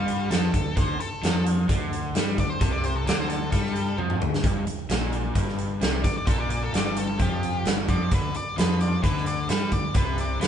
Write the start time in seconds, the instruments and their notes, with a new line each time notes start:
Already playing: fingered electric bass G2, overdriven electric guitar G3, lead electric guitar F4
0.08 closed hi-hat
0.30 fingered electric bass F2, overdriven electric guitar F3, lead electric guitar A4, snare, closed hi-hat
0.53 fingered electric bass D2, overdriven electric guitar D3, kick, closed hi-hat
0.77 fingered electric bass D2, overdriven electric guitar D3, lead electric guitar C5, kick, closed hi-hat
0.99 lead electric guitar A4, muted fingered electric bass stroke, muted overdriven electric guitar stroke, closed hi-hat
1.23 fingered electric bass F2, overdriven electric guitar F3, snare, closed hi-hat
1.46 closed hi-hat
1.69 fingered electric bass D2, overdriven electric guitar D3, kick, closed hi-hat
1.93 closed hi-hat
2.15 fingered electric bass G2, overdriven electric guitar G3, snare, closed hi-hat
2.38 fingered electric bass D2, overdriven electric guitar D3, lead electric guitar D5, kick, closed hi-hat
2.50 lead electric guitar C5
2.60 fingered electric bass C2, overdriven electric guitar C3, lead electric guitar A4, kick, closed hi-hat
2.72 lead electric guitar D5
2.83 lead electric guitar C5, closed hi-hat
2.96 lead electric guitar A4
3.06 fingered electric bass D2, overdriven electric guitar D3, lead electric guitar D5, snare, closed hi-hat
3.19 lead electric guitar C5
3.28 lead electric guitar A4, closed hi-hat
3.52 fingered electric bass G2, overdriven electric guitar G3, lead electric guitar A4, kick, closed hi-hat
3.66 snare
3.75 closed hi-hat
3.98 fingered electric bass F2, overdriven electric guitar F3, high tom
4.10 mid tom
4.21 fingered electric bass D2, overdriven electric guitar D3, mid tom
4.34 snare
4.44 fingered electric bass G1, overdriven electric guitar G2, kick, closed hi-hat
4.67 muted fingered electric bass stroke, muted overdriven electric guitar stroke, closed hi-hat
4.89 fingered electric bass A#1, overdriven electric guitar A#2, snare, closed hi-hat
5.13 closed hi-hat
5.35 fingered electric bass G1, overdriven electric guitar G2, kick, closed hi-hat
5.49 snare
5.58 closed hi-hat
5.81 fingered electric bass C2, overdriven electric guitar C3, snare, closed hi-hat
6.04 fingered electric bass G1, overdriven electric guitar G2, lead electric guitar D5, kick, closed hi-hat
6.18 lead electric guitar D5
6.27 fingered electric bass A#1, overdriven electric guitar A#2, lead electric guitar A4, kick, closed hi-hat
6.39 lead electric guitar D5
6.50 lead electric guitar D5, closed hi-hat
6.63 lead electric guitar A4
6.73 fingered electric bass G1, overdriven electric guitar G2, lead electric guitar D5, snare, closed hi-hat
6.85 lead electric guitar D5
6.96 lead electric guitar A4, closed hi-hat
7.19 fingered electric bass F2, overdriven electric guitar F3, lead electric guitar G4, kick, closed hi-hat
7.43 closed hi-hat
7.65 fingered electric bass G1, overdriven electric guitar G2, snare, closed hi-hat
7.88 fingered electric bass F2, overdriven electric guitar F3, lead electric guitar D5, kick, closed hi-hat
8.11 fingered electric bass D2, overdriven electric guitar D3, lead electric guitar B4, kick, closed hi-hat
8.34 lead electric guitar D5, muted fingered electric bass stroke, muted overdriven electric guitar stroke, closed hi-hat
8.57 fingered electric bass F2, overdriven electric guitar F3, lead electric guitar B4, snare, closed hi-hat
8.80 lead electric guitar D5, closed hi-hat
9.03 fingered electric bass D2, overdriven electric guitar D3, lead electric guitar B4, kick, closed hi-hat
9.17 snare
9.26 lead electric guitar D5, closed hi-hat
9.49 fingered electric bass G2, overdriven electric guitar G3, lead electric guitar B4, snare, closed hi-hat
9.71 fingered electric bass D2, overdriven electric guitar D3, lead electric guitar D5, kick, closed hi-hat
9.94 fingered electric bass C2, overdriven electric guitar C3, lead electric guitar B4, kick, closed hi-hat
10.18 lead electric guitar D5, closed hi-hat
10.40 fingered electric bass D2, overdriven electric guitar D3, lead electric guitar B4, snare, closed hi-hat